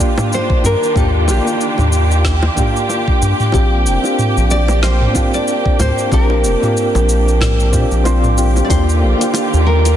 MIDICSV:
0, 0, Header, 1, 6, 480
1, 0, Start_track
1, 0, Key_signature, -2, "major"
1, 0, Tempo, 645161
1, 715, Time_signature, 4, 2, 24, 8
1, 7415, End_track
2, 0, Start_track
2, 0, Title_t, "Nylon-string guitar"
2, 0, Program_c, 0, 24
2, 0, Note_on_c, 0, 74, 103
2, 214, Note_off_c, 0, 74, 0
2, 255, Note_on_c, 0, 72, 87
2, 485, Note_off_c, 0, 72, 0
2, 488, Note_on_c, 0, 70, 92
2, 705, Note_off_c, 0, 70, 0
2, 723, Note_on_c, 0, 69, 98
2, 966, Note_off_c, 0, 69, 0
2, 966, Note_on_c, 0, 67, 79
2, 2371, Note_off_c, 0, 67, 0
2, 2631, Note_on_c, 0, 67, 95
2, 3356, Note_on_c, 0, 74, 100
2, 3375, Note_off_c, 0, 67, 0
2, 3590, Note_off_c, 0, 74, 0
2, 3593, Note_on_c, 0, 72, 97
2, 3971, Note_off_c, 0, 72, 0
2, 3973, Note_on_c, 0, 74, 91
2, 4292, Note_off_c, 0, 74, 0
2, 4320, Note_on_c, 0, 72, 90
2, 4561, Note_off_c, 0, 72, 0
2, 4564, Note_on_c, 0, 70, 97
2, 5970, Note_off_c, 0, 70, 0
2, 6432, Note_on_c, 0, 74, 67
2, 6470, Note_off_c, 0, 74, 0
2, 6473, Note_on_c, 0, 72, 92
2, 7188, Note_off_c, 0, 72, 0
2, 7191, Note_on_c, 0, 70, 83
2, 7415, Note_off_c, 0, 70, 0
2, 7415, End_track
3, 0, Start_track
3, 0, Title_t, "Synth keys"
3, 0, Program_c, 1, 88
3, 0, Control_c, 1, 64, 127
3, 0, Note_on_c, 1, 58, 81
3, 0, Note_on_c, 1, 62, 75
3, 0, Note_on_c, 1, 65, 80
3, 0, Note_on_c, 1, 67, 82
3, 2, Note_off_c, 1, 67, 0
3, 2, Note_on_c, 1, 67, 91
3, 678, Note_off_c, 1, 58, 0
3, 683, Note_off_c, 1, 62, 0
3, 690, Note_off_c, 1, 65, 0
3, 694, Note_off_c, 1, 67, 0
3, 706, Note_on_c, 1, 58, 86
3, 711, Note_on_c, 1, 62, 78
3, 715, Note_on_c, 1, 65, 78
3, 722, Note_on_c, 1, 67, 98
3, 1054, Note_off_c, 1, 58, 0
3, 1057, Note_off_c, 1, 62, 0
3, 1059, Note_off_c, 1, 65, 0
3, 1063, Note_off_c, 1, 67, 0
3, 1074, Note_on_c, 1, 58, 75
3, 1081, Note_on_c, 1, 62, 70
3, 1095, Note_on_c, 1, 65, 69
3, 1102, Note_on_c, 1, 67, 78
3, 1881, Note_off_c, 1, 58, 0
3, 1885, Note_off_c, 1, 62, 0
3, 1892, Note_off_c, 1, 65, 0
3, 1895, Note_off_c, 1, 67, 0
3, 1902, Note_on_c, 1, 58, 78
3, 1911, Note_on_c, 1, 62, 79
3, 1920, Note_on_c, 1, 65, 78
3, 1933, Note_on_c, 1, 67, 89
3, 2604, Note_off_c, 1, 58, 0
3, 2609, Note_off_c, 1, 62, 0
3, 2613, Note_off_c, 1, 65, 0
3, 2619, Note_off_c, 1, 67, 0
3, 2621, Note_on_c, 1, 60, 83
3, 2628, Note_on_c, 1, 62, 78
3, 2633, Note_on_c, 1, 65, 80
3, 2639, Note_on_c, 1, 67, 97
3, 2646, Control_c, 1, 64, 0
3, 2768, Control_c, 1, 64, 127
3, 2972, Note_off_c, 1, 60, 0
3, 2976, Note_off_c, 1, 62, 0
3, 2978, Note_off_c, 1, 65, 0
3, 2981, Note_off_c, 1, 67, 0
3, 2988, Note_on_c, 1, 60, 74
3, 3000, Note_on_c, 1, 62, 70
3, 3012, Note_on_c, 1, 65, 69
3, 3023, Note_on_c, 1, 67, 81
3, 3798, Note_off_c, 1, 60, 0
3, 3804, Note_off_c, 1, 62, 0
3, 3810, Note_off_c, 1, 65, 0
3, 3816, Note_off_c, 1, 67, 0
3, 3817, Note_on_c, 1, 60, 85
3, 3825, Note_on_c, 1, 62, 74
3, 3836, Note_on_c, 1, 65, 79
3, 3847, Note_on_c, 1, 67, 94
3, 4521, Note_off_c, 1, 60, 0
3, 4525, Note_off_c, 1, 62, 0
3, 4531, Note_off_c, 1, 65, 0
3, 4536, Note_off_c, 1, 67, 0
3, 4549, Note_on_c, 1, 60, 89
3, 4553, Note_on_c, 1, 62, 84
3, 4559, Note_on_c, 1, 65, 82
3, 4564, Note_on_c, 1, 67, 96
3, 4896, Note_off_c, 1, 60, 0
3, 4898, Note_off_c, 1, 62, 0
3, 4901, Note_off_c, 1, 65, 0
3, 4903, Note_off_c, 1, 67, 0
3, 4910, Note_on_c, 1, 60, 74
3, 4922, Note_on_c, 1, 62, 72
3, 4933, Note_on_c, 1, 65, 74
3, 4940, Note_on_c, 1, 67, 80
3, 5719, Note_off_c, 1, 60, 0
3, 5725, Note_off_c, 1, 62, 0
3, 5731, Note_off_c, 1, 65, 0
3, 5734, Note_off_c, 1, 67, 0
3, 5745, Note_on_c, 1, 60, 75
3, 5750, Note_on_c, 1, 62, 67
3, 5754, Note_on_c, 1, 65, 67
3, 5761, Note_on_c, 1, 67, 77
3, 5965, Note_off_c, 1, 60, 0
3, 5968, Note_off_c, 1, 62, 0
3, 5970, Note_off_c, 1, 65, 0
3, 5973, Note_off_c, 1, 67, 0
3, 5982, Note_on_c, 1, 60, 94
3, 5988, Note_on_c, 1, 62, 83
3, 5991, Note_on_c, 1, 65, 85
3, 5997, Note_on_c, 1, 72, 100
3, 6204, Note_off_c, 1, 60, 0
3, 6207, Note_off_c, 1, 62, 0
3, 6208, Note_off_c, 1, 65, 0
3, 6212, Note_off_c, 1, 72, 0
3, 6224, Note_on_c, 1, 60, 73
3, 6230, Note_on_c, 1, 62, 68
3, 6234, Note_on_c, 1, 65, 72
3, 6238, Note_on_c, 1, 67, 88
3, 6445, Note_off_c, 1, 60, 0
3, 6448, Note_off_c, 1, 62, 0
3, 6450, Note_off_c, 1, 65, 0
3, 6452, Note_off_c, 1, 67, 0
3, 6463, Note_on_c, 1, 58, 89
3, 6468, Note_on_c, 1, 62, 82
3, 6471, Note_on_c, 1, 65, 80
3, 6479, Note_on_c, 1, 67, 98
3, 6485, Control_c, 1, 64, 0
3, 6632, Control_c, 1, 64, 127
3, 6813, Note_off_c, 1, 58, 0
3, 6816, Note_off_c, 1, 62, 0
3, 6817, Note_off_c, 1, 65, 0
3, 6821, Note_off_c, 1, 67, 0
3, 6838, Note_on_c, 1, 58, 77
3, 6848, Note_on_c, 1, 62, 72
3, 6861, Note_on_c, 1, 65, 70
3, 6870, Note_on_c, 1, 67, 82
3, 7415, Note_off_c, 1, 58, 0
3, 7415, Note_off_c, 1, 62, 0
3, 7415, Note_off_c, 1, 65, 0
3, 7415, Note_off_c, 1, 67, 0
3, 7415, End_track
4, 0, Start_track
4, 0, Title_t, "String section"
4, 0, Program_c, 2, 48
4, 0, Note_on_c, 2, 51, 72
4, 0, Note_on_c, 2, 62, 62
4, 0, Note_on_c, 2, 65, 67
4, 0, Note_on_c, 2, 67, 85
4, 2607, Note_off_c, 2, 65, 0
4, 2608, Note_off_c, 2, 51, 0
4, 2609, Note_off_c, 2, 62, 0
4, 2641, Note_on_c, 2, 58, 76
4, 2642, Note_on_c, 2, 62, 67
4, 6447, Note_off_c, 2, 67, 0
4, 6448, Note_off_c, 2, 58, 0
4, 6449, Note_off_c, 2, 62, 0
4, 6462, Note_on_c, 2, 51, 80
4, 6464, Note_on_c, 2, 65, 69
4, 6464, Note_on_c, 2, 67, 82
4, 6466, Note_on_c, 2, 50, 69
4, 7415, Note_off_c, 2, 50, 0
4, 7415, Note_off_c, 2, 51, 0
4, 7415, Note_off_c, 2, 65, 0
4, 7415, Note_off_c, 2, 67, 0
4, 7415, End_track
5, 0, Start_track
5, 0, Title_t, "Analog synth bass"
5, 0, Program_c, 3, 38
5, 477, Note_on_c, 3, 43, 88
5, 563, Note_off_c, 3, 43, 0
5, 713, Note_on_c, 3, 39, 101
5, 958, Note_on_c, 3, 34, 71
5, 970, Note_off_c, 3, 39, 0
5, 1044, Note_off_c, 3, 34, 0
5, 1329, Note_on_c, 3, 39, 107
5, 1853, Note_off_c, 3, 39, 0
5, 2396, Note_on_c, 3, 43, 85
5, 2482, Note_off_c, 3, 43, 0
5, 2632, Note_on_c, 3, 34, 100
5, 2874, Note_on_c, 3, 29, 75
5, 2886, Note_off_c, 3, 34, 0
5, 2962, Note_off_c, 3, 29, 0
5, 3254, Note_on_c, 3, 34, 100
5, 3776, Note_off_c, 3, 34, 0
5, 4314, Note_on_c, 3, 38, 91
5, 4401, Note_off_c, 3, 38, 0
5, 4552, Note_on_c, 3, 34, 104
5, 4793, Note_on_c, 3, 29, 75
5, 4804, Note_off_c, 3, 34, 0
5, 4881, Note_off_c, 3, 29, 0
5, 5173, Note_on_c, 3, 34, 113
5, 5751, Note_on_c, 3, 46, 95
5, 5762, Note_off_c, 3, 34, 0
5, 5840, Note_off_c, 3, 46, 0
5, 5887, Note_on_c, 3, 34, 100
5, 6413, Note_off_c, 3, 34, 0
5, 6472, Note_on_c, 3, 39, 100
5, 6718, Note_on_c, 3, 34, 70
5, 6729, Note_off_c, 3, 39, 0
5, 6803, Note_off_c, 3, 34, 0
5, 7097, Note_on_c, 3, 39, 107
5, 7415, Note_off_c, 3, 39, 0
5, 7415, End_track
6, 0, Start_track
6, 0, Title_t, "Drums"
6, 2, Note_on_c, 9, 82, 77
6, 76, Note_off_c, 9, 82, 0
6, 131, Note_on_c, 9, 60, 83
6, 135, Note_on_c, 9, 45, 69
6, 137, Note_on_c, 9, 82, 33
6, 205, Note_off_c, 9, 60, 0
6, 209, Note_off_c, 9, 45, 0
6, 212, Note_off_c, 9, 82, 0
6, 242, Note_on_c, 9, 82, 43
6, 317, Note_off_c, 9, 82, 0
6, 371, Note_on_c, 9, 36, 102
6, 445, Note_off_c, 9, 36, 0
6, 476, Note_on_c, 9, 60, 53
6, 482, Note_on_c, 9, 82, 71
6, 550, Note_off_c, 9, 60, 0
6, 556, Note_off_c, 9, 82, 0
6, 619, Note_on_c, 9, 82, 32
6, 694, Note_off_c, 9, 82, 0
6, 712, Note_on_c, 9, 36, 110
6, 719, Note_on_c, 9, 45, 80
6, 722, Note_on_c, 9, 82, 38
6, 787, Note_off_c, 9, 36, 0
6, 793, Note_off_c, 9, 45, 0
6, 796, Note_off_c, 9, 82, 0
6, 950, Note_on_c, 9, 60, 65
6, 957, Note_on_c, 9, 82, 74
6, 1024, Note_off_c, 9, 60, 0
6, 1032, Note_off_c, 9, 82, 0
6, 1094, Note_on_c, 9, 82, 31
6, 1168, Note_off_c, 9, 82, 0
6, 1196, Note_on_c, 9, 82, 43
6, 1271, Note_off_c, 9, 82, 0
6, 1323, Note_on_c, 9, 60, 50
6, 1332, Note_on_c, 9, 45, 77
6, 1335, Note_on_c, 9, 82, 26
6, 1397, Note_off_c, 9, 60, 0
6, 1407, Note_off_c, 9, 45, 0
6, 1409, Note_off_c, 9, 82, 0
6, 1432, Note_on_c, 9, 82, 68
6, 1507, Note_off_c, 9, 82, 0
6, 1572, Note_on_c, 9, 82, 30
6, 1646, Note_off_c, 9, 82, 0
6, 1671, Note_on_c, 9, 36, 59
6, 1671, Note_on_c, 9, 38, 73
6, 1674, Note_on_c, 9, 82, 42
6, 1745, Note_off_c, 9, 36, 0
6, 1746, Note_off_c, 9, 38, 0
6, 1748, Note_off_c, 9, 82, 0
6, 1805, Note_on_c, 9, 60, 81
6, 1879, Note_off_c, 9, 60, 0
6, 1911, Note_on_c, 9, 36, 93
6, 1913, Note_on_c, 9, 45, 80
6, 1915, Note_on_c, 9, 82, 72
6, 1985, Note_off_c, 9, 36, 0
6, 1987, Note_off_c, 9, 45, 0
6, 1990, Note_off_c, 9, 82, 0
6, 2057, Note_on_c, 9, 82, 30
6, 2131, Note_off_c, 9, 82, 0
6, 2153, Note_on_c, 9, 60, 52
6, 2156, Note_on_c, 9, 82, 41
6, 2228, Note_off_c, 9, 60, 0
6, 2231, Note_off_c, 9, 82, 0
6, 2289, Note_on_c, 9, 36, 99
6, 2363, Note_off_c, 9, 36, 0
6, 2397, Note_on_c, 9, 82, 73
6, 2471, Note_off_c, 9, 82, 0
6, 2529, Note_on_c, 9, 45, 77
6, 2531, Note_on_c, 9, 82, 29
6, 2603, Note_off_c, 9, 45, 0
6, 2606, Note_off_c, 9, 82, 0
6, 2621, Note_on_c, 9, 60, 61
6, 2632, Note_on_c, 9, 36, 111
6, 2636, Note_on_c, 9, 82, 41
6, 2695, Note_off_c, 9, 60, 0
6, 2706, Note_off_c, 9, 36, 0
6, 2711, Note_off_c, 9, 82, 0
6, 2875, Note_on_c, 9, 82, 67
6, 2949, Note_off_c, 9, 82, 0
6, 3004, Note_on_c, 9, 60, 45
6, 3013, Note_on_c, 9, 82, 29
6, 3079, Note_off_c, 9, 60, 0
6, 3087, Note_off_c, 9, 82, 0
6, 3115, Note_on_c, 9, 45, 79
6, 3118, Note_on_c, 9, 82, 42
6, 3190, Note_off_c, 9, 45, 0
6, 3192, Note_off_c, 9, 82, 0
6, 3253, Note_on_c, 9, 82, 27
6, 3328, Note_off_c, 9, 82, 0
6, 3353, Note_on_c, 9, 82, 68
6, 3428, Note_off_c, 9, 82, 0
6, 3485, Note_on_c, 9, 60, 82
6, 3491, Note_on_c, 9, 82, 28
6, 3559, Note_off_c, 9, 60, 0
6, 3565, Note_off_c, 9, 82, 0
6, 3592, Note_on_c, 9, 38, 76
6, 3594, Note_on_c, 9, 82, 41
6, 3666, Note_off_c, 9, 38, 0
6, 3669, Note_off_c, 9, 82, 0
6, 3729, Note_on_c, 9, 45, 81
6, 3804, Note_off_c, 9, 45, 0
6, 3830, Note_on_c, 9, 60, 52
6, 3832, Note_on_c, 9, 36, 90
6, 3834, Note_on_c, 9, 82, 75
6, 3905, Note_off_c, 9, 60, 0
6, 3906, Note_off_c, 9, 36, 0
6, 3908, Note_off_c, 9, 82, 0
6, 3970, Note_on_c, 9, 82, 29
6, 4045, Note_off_c, 9, 82, 0
6, 4074, Note_on_c, 9, 82, 41
6, 4148, Note_off_c, 9, 82, 0
6, 4208, Note_on_c, 9, 36, 93
6, 4282, Note_off_c, 9, 36, 0
6, 4310, Note_on_c, 9, 45, 74
6, 4312, Note_on_c, 9, 60, 66
6, 4313, Note_on_c, 9, 82, 68
6, 4385, Note_off_c, 9, 45, 0
6, 4386, Note_off_c, 9, 60, 0
6, 4387, Note_off_c, 9, 82, 0
6, 4451, Note_on_c, 9, 82, 32
6, 4525, Note_off_c, 9, 82, 0
6, 4551, Note_on_c, 9, 36, 117
6, 4554, Note_on_c, 9, 82, 44
6, 4626, Note_off_c, 9, 36, 0
6, 4629, Note_off_c, 9, 82, 0
6, 4686, Note_on_c, 9, 60, 49
6, 4761, Note_off_c, 9, 60, 0
6, 4794, Note_on_c, 9, 82, 76
6, 4868, Note_off_c, 9, 82, 0
6, 4932, Note_on_c, 9, 45, 74
6, 4934, Note_on_c, 9, 82, 30
6, 5006, Note_off_c, 9, 45, 0
6, 5009, Note_off_c, 9, 82, 0
6, 5037, Note_on_c, 9, 82, 43
6, 5111, Note_off_c, 9, 82, 0
6, 5170, Note_on_c, 9, 60, 67
6, 5177, Note_on_c, 9, 82, 28
6, 5245, Note_off_c, 9, 60, 0
6, 5251, Note_off_c, 9, 82, 0
6, 5276, Note_on_c, 9, 82, 67
6, 5350, Note_off_c, 9, 82, 0
6, 5418, Note_on_c, 9, 82, 32
6, 5493, Note_off_c, 9, 82, 0
6, 5511, Note_on_c, 9, 36, 57
6, 5512, Note_on_c, 9, 60, 50
6, 5517, Note_on_c, 9, 38, 76
6, 5517, Note_on_c, 9, 45, 77
6, 5519, Note_on_c, 9, 82, 42
6, 5585, Note_off_c, 9, 36, 0
6, 5586, Note_off_c, 9, 60, 0
6, 5591, Note_off_c, 9, 38, 0
6, 5591, Note_off_c, 9, 45, 0
6, 5594, Note_off_c, 9, 82, 0
6, 5653, Note_on_c, 9, 82, 31
6, 5728, Note_off_c, 9, 82, 0
6, 5751, Note_on_c, 9, 36, 100
6, 5754, Note_on_c, 9, 82, 72
6, 5825, Note_off_c, 9, 36, 0
6, 5828, Note_off_c, 9, 82, 0
6, 5887, Note_on_c, 9, 82, 31
6, 5962, Note_off_c, 9, 82, 0
6, 5992, Note_on_c, 9, 60, 69
6, 5994, Note_on_c, 9, 82, 40
6, 6066, Note_off_c, 9, 60, 0
6, 6069, Note_off_c, 9, 82, 0
6, 6128, Note_on_c, 9, 45, 75
6, 6130, Note_on_c, 9, 82, 28
6, 6202, Note_off_c, 9, 45, 0
6, 6205, Note_off_c, 9, 82, 0
6, 6233, Note_on_c, 9, 82, 78
6, 6308, Note_off_c, 9, 82, 0
6, 6369, Note_on_c, 9, 60, 52
6, 6372, Note_on_c, 9, 82, 31
6, 6444, Note_off_c, 9, 60, 0
6, 6447, Note_off_c, 9, 82, 0
6, 6472, Note_on_c, 9, 36, 122
6, 6476, Note_on_c, 9, 46, 60
6, 6477, Note_on_c, 9, 60, 48
6, 6479, Note_on_c, 9, 82, 58
6, 6546, Note_off_c, 9, 36, 0
6, 6550, Note_off_c, 9, 46, 0
6, 6551, Note_off_c, 9, 60, 0
6, 6553, Note_off_c, 9, 82, 0
6, 6616, Note_on_c, 9, 82, 34
6, 6690, Note_off_c, 9, 82, 0
6, 6854, Note_on_c, 9, 46, 48
6, 6856, Note_on_c, 9, 82, 65
6, 6928, Note_off_c, 9, 46, 0
6, 6931, Note_off_c, 9, 82, 0
6, 6946, Note_on_c, 9, 60, 76
6, 6953, Note_on_c, 9, 46, 53
6, 6956, Note_on_c, 9, 82, 57
6, 7021, Note_off_c, 9, 60, 0
6, 7028, Note_off_c, 9, 46, 0
6, 7030, Note_off_c, 9, 82, 0
6, 7096, Note_on_c, 9, 82, 30
6, 7170, Note_off_c, 9, 82, 0
6, 7331, Note_on_c, 9, 46, 44
6, 7333, Note_on_c, 9, 82, 68
6, 7334, Note_on_c, 9, 60, 49
6, 7405, Note_off_c, 9, 46, 0
6, 7408, Note_off_c, 9, 60, 0
6, 7408, Note_off_c, 9, 82, 0
6, 7415, End_track
0, 0, End_of_file